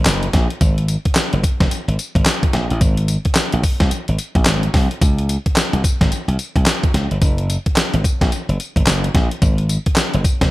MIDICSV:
0, 0, Header, 1, 4, 480
1, 0, Start_track
1, 0, Tempo, 550459
1, 532, Time_signature, 4, 2, 24, 8
1, 9163, End_track
2, 0, Start_track
2, 0, Title_t, "Slap bass"
2, 0, Program_c, 0, 36
2, 55, Note_on_c, 0, 30, 97
2, 242, Note_off_c, 0, 30, 0
2, 294, Note_on_c, 0, 34, 92
2, 408, Note_off_c, 0, 34, 0
2, 531, Note_on_c, 0, 32, 104
2, 834, Note_off_c, 0, 32, 0
2, 1161, Note_on_c, 0, 30, 100
2, 1233, Note_off_c, 0, 30, 0
2, 1400, Note_on_c, 0, 29, 89
2, 1473, Note_off_c, 0, 29, 0
2, 1638, Note_on_c, 0, 32, 91
2, 1712, Note_off_c, 0, 32, 0
2, 1879, Note_on_c, 0, 32, 100
2, 1952, Note_off_c, 0, 32, 0
2, 2215, Note_on_c, 0, 34, 94
2, 2328, Note_off_c, 0, 34, 0
2, 2362, Note_on_c, 0, 33, 98
2, 2434, Note_off_c, 0, 33, 0
2, 2453, Note_on_c, 0, 32, 114
2, 2755, Note_off_c, 0, 32, 0
2, 3081, Note_on_c, 0, 34, 107
2, 3153, Note_off_c, 0, 34, 0
2, 3319, Note_on_c, 0, 36, 86
2, 3392, Note_off_c, 0, 36, 0
2, 3562, Note_on_c, 0, 32, 81
2, 3634, Note_off_c, 0, 32, 0
2, 3797, Note_on_c, 0, 34, 94
2, 3870, Note_off_c, 0, 34, 0
2, 3888, Note_on_c, 0, 32, 99
2, 4077, Note_off_c, 0, 32, 0
2, 4133, Note_on_c, 0, 36, 94
2, 4247, Note_off_c, 0, 36, 0
2, 4374, Note_on_c, 0, 37, 106
2, 4675, Note_off_c, 0, 37, 0
2, 4997, Note_on_c, 0, 36, 100
2, 5071, Note_off_c, 0, 36, 0
2, 5242, Note_on_c, 0, 32, 93
2, 5314, Note_off_c, 0, 32, 0
2, 5475, Note_on_c, 0, 36, 83
2, 5549, Note_off_c, 0, 36, 0
2, 5718, Note_on_c, 0, 36, 94
2, 5791, Note_off_c, 0, 36, 0
2, 6051, Note_on_c, 0, 37, 87
2, 6166, Note_off_c, 0, 37, 0
2, 6200, Note_on_c, 0, 31, 86
2, 6272, Note_off_c, 0, 31, 0
2, 6294, Note_on_c, 0, 30, 98
2, 6595, Note_off_c, 0, 30, 0
2, 6920, Note_on_c, 0, 32, 105
2, 6993, Note_off_c, 0, 32, 0
2, 7162, Note_on_c, 0, 34, 88
2, 7234, Note_off_c, 0, 34, 0
2, 7400, Note_on_c, 0, 30, 92
2, 7473, Note_off_c, 0, 30, 0
2, 7640, Note_on_c, 0, 32, 94
2, 7713, Note_off_c, 0, 32, 0
2, 7733, Note_on_c, 0, 30, 105
2, 7920, Note_off_c, 0, 30, 0
2, 7975, Note_on_c, 0, 34, 94
2, 8088, Note_off_c, 0, 34, 0
2, 8217, Note_on_c, 0, 32, 113
2, 8517, Note_off_c, 0, 32, 0
2, 8843, Note_on_c, 0, 30, 97
2, 8915, Note_off_c, 0, 30, 0
2, 9080, Note_on_c, 0, 29, 89
2, 9152, Note_off_c, 0, 29, 0
2, 9163, End_track
3, 0, Start_track
3, 0, Title_t, "Muted slap bass strokes"
3, 3413, Note_on_c, 9, 29, 49
3, 3500, Note_off_c, 9, 29, 0
3, 5332, Note_on_c, 9, 29, 47
3, 5419, Note_off_c, 9, 29, 0
3, 7259, Note_on_c, 9, 29, 45
3, 7346, Note_off_c, 9, 29, 0
3, 9163, End_track
4, 0, Start_track
4, 0, Title_t, "Drums"
4, 46, Note_on_c, 9, 39, 101
4, 51, Note_on_c, 9, 42, 77
4, 52, Note_on_c, 9, 38, 121
4, 52, Note_on_c, 9, 54, 96
4, 133, Note_off_c, 9, 39, 0
4, 138, Note_off_c, 9, 42, 0
4, 139, Note_off_c, 9, 54, 0
4, 140, Note_off_c, 9, 38, 0
4, 198, Note_on_c, 9, 42, 62
4, 286, Note_off_c, 9, 42, 0
4, 291, Note_on_c, 9, 38, 68
4, 291, Note_on_c, 9, 42, 76
4, 293, Note_on_c, 9, 36, 113
4, 378, Note_off_c, 9, 38, 0
4, 378, Note_off_c, 9, 42, 0
4, 380, Note_off_c, 9, 36, 0
4, 440, Note_on_c, 9, 42, 56
4, 527, Note_off_c, 9, 42, 0
4, 531, Note_on_c, 9, 42, 76
4, 531, Note_on_c, 9, 54, 68
4, 532, Note_on_c, 9, 36, 120
4, 618, Note_off_c, 9, 54, 0
4, 619, Note_off_c, 9, 36, 0
4, 619, Note_off_c, 9, 42, 0
4, 679, Note_on_c, 9, 42, 55
4, 767, Note_off_c, 9, 42, 0
4, 770, Note_on_c, 9, 54, 69
4, 771, Note_on_c, 9, 42, 78
4, 858, Note_off_c, 9, 54, 0
4, 859, Note_off_c, 9, 42, 0
4, 918, Note_on_c, 9, 42, 54
4, 920, Note_on_c, 9, 36, 84
4, 1004, Note_on_c, 9, 39, 101
4, 1006, Note_off_c, 9, 42, 0
4, 1007, Note_off_c, 9, 36, 0
4, 1009, Note_on_c, 9, 54, 109
4, 1010, Note_on_c, 9, 38, 127
4, 1010, Note_on_c, 9, 42, 87
4, 1091, Note_off_c, 9, 39, 0
4, 1096, Note_off_c, 9, 54, 0
4, 1098, Note_off_c, 9, 38, 0
4, 1098, Note_off_c, 9, 42, 0
4, 1158, Note_on_c, 9, 42, 58
4, 1246, Note_off_c, 9, 42, 0
4, 1252, Note_on_c, 9, 36, 85
4, 1255, Note_on_c, 9, 42, 76
4, 1255, Note_on_c, 9, 54, 76
4, 1339, Note_off_c, 9, 36, 0
4, 1342, Note_off_c, 9, 54, 0
4, 1343, Note_off_c, 9, 42, 0
4, 1399, Note_on_c, 9, 36, 99
4, 1399, Note_on_c, 9, 38, 76
4, 1401, Note_on_c, 9, 42, 57
4, 1486, Note_off_c, 9, 36, 0
4, 1487, Note_off_c, 9, 38, 0
4, 1488, Note_off_c, 9, 42, 0
4, 1493, Note_on_c, 9, 54, 61
4, 1494, Note_on_c, 9, 42, 75
4, 1580, Note_off_c, 9, 54, 0
4, 1581, Note_off_c, 9, 42, 0
4, 1644, Note_on_c, 9, 42, 59
4, 1731, Note_off_c, 9, 42, 0
4, 1734, Note_on_c, 9, 54, 62
4, 1735, Note_on_c, 9, 42, 76
4, 1821, Note_off_c, 9, 54, 0
4, 1822, Note_off_c, 9, 42, 0
4, 1877, Note_on_c, 9, 36, 86
4, 1884, Note_on_c, 9, 42, 58
4, 1964, Note_off_c, 9, 36, 0
4, 1966, Note_on_c, 9, 39, 109
4, 1971, Note_off_c, 9, 42, 0
4, 1971, Note_on_c, 9, 42, 79
4, 1972, Note_on_c, 9, 54, 88
4, 1973, Note_on_c, 9, 38, 127
4, 2054, Note_off_c, 9, 39, 0
4, 2058, Note_off_c, 9, 42, 0
4, 2059, Note_off_c, 9, 54, 0
4, 2060, Note_off_c, 9, 38, 0
4, 2118, Note_on_c, 9, 36, 100
4, 2120, Note_on_c, 9, 42, 57
4, 2205, Note_off_c, 9, 36, 0
4, 2207, Note_off_c, 9, 42, 0
4, 2209, Note_on_c, 9, 38, 68
4, 2209, Note_on_c, 9, 42, 75
4, 2296, Note_off_c, 9, 42, 0
4, 2297, Note_off_c, 9, 38, 0
4, 2359, Note_on_c, 9, 42, 51
4, 2446, Note_off_c, 9, 42, 0
4, 2450, Note_on_c, 9, 36, 123
4, 2450, Note_on_c, 9, 42, 70
4, 2450, Note_on_c, 9, 54, 73
4, 2537, Note_off_c, 9, 36, 0
4, 2537, Note_off_c, 9, 42, 0
4, 2537, Note_off_c, 9, 54, 0
4, 2593, Note_on_c, 9, 42, 54
4, 2681, Note_off_c, 9, 42, 0
4, 2687, Note_on_c, 9, 54, 73
4, 2688, Note_on_c, 9, 42, 81
4, 2774, Note_off_c, 9, 54, 0
4, 2776, Note_off_c, 9, 42, 0
4, 2833, Note_on_c, 9, 42, 52
4, 2838, Note_on_c, 9, 36, 83
4, 2920, Note_off_c, 9, 42, 0
4, 2921, Note_on_c, 9, 39, 106
4, 2925, Note_off_c, 9, 36, 0
4, 2925, Note_on_c, 9, 54, 102
4, 2927, Note_on_c, 9, 38, 125
4, 2927, Note_on_c, 9, 42, 97
4, 3008, Note_off_c, 9, 39, 0
4, 3012, Note_off_c, 9, 54, 0
4, 3014, Note_off_c, 9, 38, 0
4, 3014, Note_off_c, 9, 42, 0
4, 3074, Note_on_c, 9, 42, 65
4, 3161, Note_off_c, 9, 42, 0
4, 3170, Note_on_c, 9, 36, 89
4, 3170, Note_on_c, 9, 46, 78
4, 3170, Note_on_c, 9, 54, 76
4, 3257, Note_off_c, 9, 36, 0
4, 3257, Note_off_c, 9, 54, 0
4, 3258, Note_off_c, 9, 46, 0
4, 3314, Note_on_c, 9, 38, 75
4, 3316, Note_on_c, 9, 42, 58
4, 3317, Note_on_c, 9, 36, 98
4, 3402, Note_off_c, 9, 38, 0
4, 3403, Note_off_c, 9, 42, 0
4, 3404, Note_off_c, 9, 36, 0
4, 3411, Note_on_c, 9, 42, 79
4, 3411, Note_on_c, 9, 54, 60
4, 3498, Note_off_c, 9, 42, 0
4, 3498, Note_off_c, 9, 54, 0
4, 3558, Note_on_c, 9, 42, 57
4, 3645, Note_off_c, 9, 42, 0
4, 3649, Note_on_c, 9, 54, 60
4, 3650, Note_on_c, 9, 42, 72
4, 3736, Note_off_c, 9, 54, 0
4, 3737, Note_off_c, 9, 42, 0
4, 3795, Note_on_c, 9, 36, 92
4, 3796, Note_on_c, 9, 42, 62
4, 3882, Note_off_c, 9, 36, 0
4, 3883, Note_off_c, 9, 42, 0
4, 3883, Note_on_c, 9, 39, 102
4, 3888, Note_on_c, 9, 42, 74
4, 3889, Note_on_c, 9, 38, 115
4, 3889, Note_on_c, 9, 54, 98
4, 3970, Note_off_c, 9, 39, 0
4, 3975, Note_off_c, 9, 42, 0
4, 3976, Note_off_c, 9, 54, 0
4, 3977, Note_off_c, 9, 38, 0
4, 4038, Note_on_c, 9, 42, 55
4, 4126, Note_off_c, 9, 42, 0
4, 4132, Note_on_c, 9, 38, 69
4, 4132, Note_on_c, 9, 46, 72
4, 4133, Note_on_c, 9, 36, 106
4, 4220, Note_off_c, 9, 36, 0
4, 4220, Note_off_c, 9, 38, 0
4, 4220, Note_off_c, 9, 46, 0
4, 4281, Note_on_c, 9, 42, 54
4, 4369, Note_off_c, 9, 42, 0
4, 4373, Note_on_c, 9, 36, 124
4, 4374, Note_on_c, 9, 42, 77
4, 4374, Note_on_c, 9, 54, 73
4, 4460, Note_off_c, 9, 36, 0
4, 4461, Note_off_c, 9, 54, 0
4, 4462, Note_off_c, 9, 42, 0
4, 4521, Note_on_c, 9, 42, 57
4, 4609, Note_off_c, 9, 42, 0
4, 4614, Note_on_c, 9, 54, 71
4, 4615, Note_on_c, 9, 42, 78
4, 4701, Note_off_c, 9, 54, 0
4, 4703, Note_off_c, 9, 42, 0
4, 4761, Note_on_c, 9, 42, 57
4, 4762, Note_on_c, 9, 36, 81
4, 4848, Note_off_c, 9, 42, 0
4, 4849, Note_off_c, 9, 36, 0
4, 4850, Note_on_c, 9, 39, 106
4, 4854, Note_on_c, 9, 54, 100
4, 4856, Note_on_c, 9, 38, 127
4, 4856, Note_on_c, 9, 42, 95
4, 4937, Note_off_c, 9, 39, 0
4, 4942, Note_off_c, 9, 54, 0
4, 4943, Note_off_c, 9, 38, 0
4, 4943, Note_off_c, 9, 42, 0
4, 5000, Note_on_c, 9, 42, 64
4, 5087, Note_off_c, 9, 42, 0
4, 5093, Note_on_c, 9, 36, 95
4, 5096, Note_on_c, 9, 54, 78
4, 5097, Note_on_c, 9, 42, 71
4, 5180, Note_off_c, 9, 36, 0
4, 5184, Note_off_c, 9, 42, 0
4, 5184, Note_off_c, 9, 54, 0
4, 5241, Note_on_c, 9, 36, 104
4, 5242, Note_on_c, 9, 38, 77
4, 5243, Note_on_c, 9, 42, 59
4, 5328, Note_off_c, 9, 36, 0
4, 5329, Note_off_c, 9, 38, 0
4, 5330, Note_off_c, 9, 42, 0
4, 5335, Note_on_c, 9, 54, 63
4, 5336, Note_on_c, 9, 42, 77
4, 5422, Note_off_c, 9, 54, 0
4, 5423, Note_off_c, 9, 42, 0
4, 5481, Note_on_c, 9, 42, 61
4, 5568, Note_off_c, 9, 42, 0
4, 5571, Note_on_c, 9, 54, 66
4, 5572, Note_on_c, 9, 42, 75
4, 5658, Note_off_c, 9, 54, 0
4, 5659, Note_off_c, 9, 42, 0
4, 5717, Note_on_c, 9, 36, 88
4, 5721, Note_on_c, 9, 42, 57
4, 5804, Note_off_c, 9, 36, 0
4, 5807, Note_on_c, 9, 39, 102
4, 5809, Note_off_c, 9, 42, 0
4, 5812, Note_on_c, 9, 42, 88
4, 5813, Note_on_c, 9, 38, 120
4, 5813, Note_on_c, 9, 54, 91
4, 5894, Note_off_c, 9, 39, 0
4, 5899, Note_off_c, 9, 42, 0
4, 5900, Note_off_c, 9, 54, 0
4, 5901, Note_off_c, 9, 38, 0
4, 5960, Note_on_c, 9, 36, 104
4, 5960, Note_on_c, 9, 42, 57
4, 6047, Note_off_c, 9, 36, 0
4, 6047, Note_off_c, 9, 42, 0
4, 6054, Note_on_c, 9, 38, 65
4, 6054, Note_on_c, 9, 42, 83
4, 6142, Note_off_c, 9, 38, 0
4, 6142, Note_off_c, 9, 42, 0
4, 6201, Note_on_c, 9, 42, 56
4, 6288, Note_off_c, 9, 42, 0
4, 6292, Note_on_c, 9, 42, 73
4, 6292, Note_on_c, 9, 54, 71
4, 6293, Note_on_c, 9, 36, 122
4, 6379, Note_off_c, 9, 54, 0
4, 6380, Note_off_c, 9, 36, 0
4, 6380, Note_off_c, 9, 42, 0
4, 6437, Note_on_c, 9, 42, 55
4, 6524, Note_off_c, 9, 42, 0
4, 6537, Note_on_c, 9, 54, 76
4, 6538, Note_on_c, 9, 42, 73
4, 6624, Note_off_c, 9, 54, 0
4, 6625, Note_off_c, 9, 42, 0
4, 6681, Note_on_c, 9, 42, 57
4, 6682, Note_on_c, 9, 36, 83
4, 6768, Note_off_c, 9, 42, 0
4, 6769, Note_off_c, 9, 36, 0
4, 6770, Note_on_c, 9, 39, 96
4, 6774, Note_on_c, 9, 54, 104
4, 6776, Note_on_c, 9, 38, 127
4, 6776, Note_on_c, 9, 42, 99
4, 6857, Note_off_c, 9, 39, 0
4, 6861, Note_off_c, 9, 54, 0
4, 6863, Note_off_c, 9, 38, 0
4, 6863, Note_off_c, 9, 42, 0
4, 6920, Note_on_c, 9, 42, 62
4, 7007, Note_off_c, 9, 42, 0
4, 7014, Note_on_c, 9, 36, 88
4, 7018, Note_on_c, 9, 42, 73
4, 7018, Note_on_c, 9, 54, 73
4, 7101, Note_off_c, 9, 36, 0
4, 7105, Note_off_c, 9, 42, 0
4, 7105, Note_off_c, 9, 54, 0
4, 7161, Note_on_c, 9, 36, 100
4, 7163, Note_on_c, 9, 38, 77
4, 7164, Note_on_c, 9, 42, 60
4, 7248, Note_off_c, 9, 36, 0
4, 7250, Note_off_c, 9, 38, 0
4, 7252, Note_off_c, 9, 42, 0
4, 7256, Note_on_c, 9, 42, 73
4, 7256, Note_on_c, 9, 54, 64
4, 7343, Note_off_c, 9, 54, 0
4, 7344, Note_off_c, 9, 42, 0
4, 7406, Note_on_c, 9, 42, 52
4, 7493, Note_off_c, 9, 42, 0
4, 7498, Note_on_c, 9, 42, 75
4, 7498, Note_on_c, 9, 54, 61
4, 7585, Note_off_c, 9, 54, 0
4, 7586, Note_off_c, 9, 42, 0
4, 7639, Note_on_c, 9, 36, 90
4, 7646, Note_on_c, 9, 42, 59
4, 7727, Note_off_c, 9, 36, 0
4, 7730, Note_on_c, 9, 39, 103
4, 7733, Note_off_c, 9, 42, 0
4, 7735, Note_on_c, 9, 42, 82
4, 7736, Note_on_c, 9, 38, 127
4, 7736, Note_on_c, 9, 54, 96
4, 7817, Note_off_c, 9, 39, 0
4, 7822, Note_off_c, 9, 42, 0
4, 7823, Note_off_c, 9, 54, 0
4, 7824, Note_off_c, 9, 38, 0
4, 7885, Note_on_c, 9, 42, 55
4, 7972, Note_off_c, 9, 42, 0
4, 7975, Note_on_c, 9, 36, 116
4, 7976, Note_on_c, 9, 38, 68
4, 7976, Note_on_c, 9, 42, 85
4, 8062, Note_off_c, 9, 36, 0
4, 8063, Note_off_c, 9, 38, 0
4, 8063, Note_off_c, 9, 42, 0
4, 8122, Note_on_c, 9, 42, 54
4, 8209, Note_off_c, 9, 42, 0
4, 8213, Note_on_c, 9, 36, 121
4, 8213, Note_on_c, 9, 42, 75
4, 8213, Note_on_c, 9, 54, 70
4, 8300, Note_off_c, 9, 42, 0
4, 8300, Note_off_c, 9, 54, 0
4, 8301, Note_off_c, 9, 36, 0
4, 8355, Note_on_c, 9, 42, 51
4, 8443, Note_off_c, 9, 42, 0
4, 8453, Note_on_c, 9, 54, 73
4, 8454, Note_on_c, 9, 42, 79
4, 8540, Note_off_c, 9, 54, 0
4, 8541, Note_off_c, 9, 42, 0
4, 8599, Note_on_c, 9, 42, 60
4, 8602, Note_on_c, 9, 36, 88
4, 8685, Note_on_c, 9, 39, 104
4, 8686, Note_off_c, 9, 42, 0
4, 8689, Note_off_c, 9, 36, 0
4, 8689, Note_on_c, 9, 54, 102
4, 8691, Note_on_c, 9, 38, 127
4, 8691, Note_on_c, 9, 42, 92
4, 8772, Note_off_c, 9, 39, 0
4, 8776, Note_off_c, 9, 54, 0
4, 8778, Note_off_c, 9, 38, 0
4, 8778, Note_off_c, 9, 42, 0
4, 8839, Note_on_c, 9, 42, 59
4, 8926, Note_off_c, 9, 42, 0
4, 8933, Note_on_c, 9, 36, 93
4, 8936, Note_on_c, 9, 42, 74
4, 8936, Note_on_c, 9, 54, 79
4, 9020, Note_off_c, 9, 36, 0
4, 9023, Note_off_c, 9, 42, 0
4, 9023, Note_off_c, 9, 54, 0
4, 9080, Note_on_c, 9, 36, 102
4, 9080, Note_on_c, 9, 38, 78
4, 9082, Note_on_c, 9, 42, 58
4, 9163, Note_off_c, 9, 36, 0
4, 9163, Note_off_c, 9, 38, 0
4, 9163, Note_off_c, 9, 42, 0
4, 9163, End_track
0, 0, End_of_file